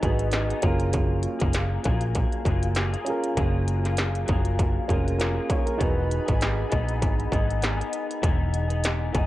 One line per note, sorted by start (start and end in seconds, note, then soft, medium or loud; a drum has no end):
0.00 0.52 G#1 medium
0.00 0.30 E3 medium
0.00 0.31 B3 medium
0.00 0.03 D#4 medium
0.00 0.64 D#4 medium
0.00 0.03 F#4 medium
0.00 0.64 F#4 soft
0.00 0.05 G#4 medium
0.00 0.05 B4 medium
0.00 kick medium
0.00 closed hi-hat medium
0.04 0.33 D#4 medium
0.04 0.33 G#4 medium
0.04 0.64 G#4 medium
0.04 0.65 B4 medium
0.19 closed hi-hat medium
0.31 0.49 E3 medium
0.31 0.50 B3 medium
0.31 0.49 D#4 medium
0.31 0.47 G#4 medium
0.31 snare loud
0.31 closed hi-hat medium
0.49 0.62 B3 soft
0.49 0.64 D#4 soft
0.49 0.63 G#4 medium
0.49 closed hi-hat soft
0.62 1.26 F#1 medium
0.62 1.41 F#3 medium
0.62 1.41 A#3 medium
0.62 3.02 C#4 medium
0.62 3.03 F4 medium
0.62 1.40 F4 medium
0.62 1.39 G#4 medium
0.62 3.04 G#4 medium
0.62 kick medium
0.62 closed hi-hat medium
0.67 3.05 A#4 medium
0.80 closed hi-hat medium
0.93 kick loud
0.93 closed hi-hat medium
1.23 closed hi-hat medium
1.39 1.77 F#1 medium
1.39 1.84 A#3 soft
1.39 1.84 F4 soft
1.39 1.84 G#4 medium
1.39 kick medium
1.39 closed hi-hat soft
1.53 snare loud
1.53 closed hi-hat medium
1.83 2.23 A#1 medium
1.83 2.44 F#3 medium
1.83 2.44 A#3 medium
1.83 2.45 F4 medium
1.83 2.47 G#4 medium
1.83 kick medium
1.83 closed hi-hat medium
2.01 closed hi-hat medium
2.15 kick medium
2.15 closed hi-hat medium
2.32 closed hi-hat soft
2.45 2.94 F#1 medium
2.45 2.74 F#3 medium
2.45 2.75 A#3 medium
2.45 2.76 F4 medium
2.45 2.77 G#4 medium
2.45 kick medium
2.45 closed hi-hat medium
2.63 closed hi-hat medium
2.75 2.93 F#3 medium
2.75 2.93 A#3 medium
2.75 2.92 F4 medium
2.75 2.90 G#4 medium
2.75 snare loud
2.75 closed hi-hat medium
2.92 3.36 A#3 soft
2.92 3.37 F4 medium
2.92 3.37 G#4 medium
2.92 closed hi-hat soft
3.05 4.84 C#4 medium
3.05 4.85 F4 medium
3.05 4.86 G#4 medium
3.05 closed hi-hat medium
3.10 4.87 A#4 medium
3.24 closed hi-hat medium
3.37 4.24 F#1 loud
3.37 3.84 F#3 medium
3.37 3.84 A#3 medium
3.37 3.84 F4 medium
3.37 3.83 G#4 medium
3.37 kick medium
3.37 closed hi-hat medium
3.68 closed hi-hat medium
3.84 4.26 A#3 soft
3.84 4.27 F4 soft
3.84 4.28 G#4 medium
3.84 snare soft
3.84 closed hi-hat soft
3.97 snare loud
3.97 closed hi-hat medium
4.15 closed hi-hat soft
4.26 4.77 F#1 medium
4.26 4.88 F#3 medium
4.26 4.88 A#3 medium
4.26 4.89 F4 medium
4.26 4.91 G#4 medium
4.26 kick medium
4.26 closed hi-hat medium
4.45 closed hi-hat medium
4.59 kick medium
4.59 closed hi-hat medium
4.88 5.38 F1 medium
4.88 5.17 F#3 medium
4.88 5.18 A#3 medium
4.88 5.80 C#4 medium
4.88 5.18 F4 soft
4.88 5.19 F4 medium
4.88 5.20 G#4 soft
4.88 5.19 G#4 medium
4.88 5.17 A#4 medium
4.88 kick medium
4.88 closed hi-hat medium
5.08 closed hi-hat soft
5.18 5.36 F#3 medium
5.18 5.36 A#3 medium
5.18 5.48 F4 soft
5.18 5.36 F4 medium
5.18 5.33 G#4 medium
5.18 5.48 A#4 medium
5.18 snare medium
5.18 closed hi-hat medium
5.35 5.78 A#3 medium
5.35 5.79 F4 medium
5.35 5.79 G#4 medium
5.50 5.66 G#4 medium
5.50 5.66 C#5 medium
5.50 kick medium
5.50 closed hi-hat medium
5.66 5.95 F4 medium
5.66 5.95 A#4 medium
5.66 closed hi-hat medium
5.77 6.18 E1 loud
5.77 6.26 E3 medium
5.77 6.26 B3 medium
5.77 8.17 D#4 medium
5.77 6.26 D#4 medium
5.77 8.18 F#4 medium
5.77 6.24 G#4 medium
5.77 8.19 G#4 medium
5.77 8.21 G#4 medium
5.77 8.21 D#5 medium
5.77 8.20 G#5 medium
5.77 8.21 B5 medium
5.77 kick medium
5.77 closed hi-hat medium
5.82 8.20 B4 medium
6.11 closed hi-hat medium
6.26 6.63 G#1 medium
6.26 6.70 B3 soft
6.26 6.70 D#4 soft
6.26 6.70 G#4 medium
6.26 kick medium
6.26 closed hi-hat medium
6.41 snare loud
6.41 closed hi-hat medium
6.69 7.02 A#1 medium
6.69 7.31 E3 medium
6.69 7.31 B3 medium
6.69 7.32 D#4 medium
6.69 7.35 G#4 medium
6.69 kick medium
6.69 closed hi-hat medium
6.89 closed hi-hat medium
7.02 7.26 G#1 medium
7.02 kick medium
7.02 closed hi-hat medium
7.20 closed hi-hat soft
7.32 7.81 G#1 medium
7.32 7.60 E3 medium
7.32 7.61 B3 medium
7.32 7.62 D#4 medium
7.32 7.63 G#4 medium
7.32 kick medium
7.32 closed hi-hat medium
7.50 closed hi-hat soft
7.61 7.78 E3 medium
7.61 7.79 B3 medium
7.61 7.78 D#4 medium
7.61 7.77 G#4 medium
7.61 snare loud
7.61 closed hi-hat medium
7.78 8.22 B3 soft
7.78 8.23 D#4 medium
7.78 8.22 G#4 medium
7.78 closed hi-hat soft
7.93 closed hi-hat medium
8.11 closed hi-hat medium
8.22 9.10 E1 loud
8.22 8.69 E3 medium
8.22 8.69 B3 medium
8.22 8.68 D#4 medium
8.22 8.67 G#4 medium
8.22 kick loud
8.22 closed hi-hat medium
8.54 closed hi-hat medium
8.68 9.12 B3 soft
8.68 9.14 D#4 medium
8.68 9.13 G#4 medium
8.68 closed hi-hat soft
8.84 snare loud
8.84 closed hi-hat loud
9.12 9.27 F#1 medium
9.12 9.27 E3 medium
9.12 9.27 B3 medium
9.12 9.27 D#4 medium
9.12 9.27 G#4 medium
9.12 kick medium
9.12 closed hi-hat medium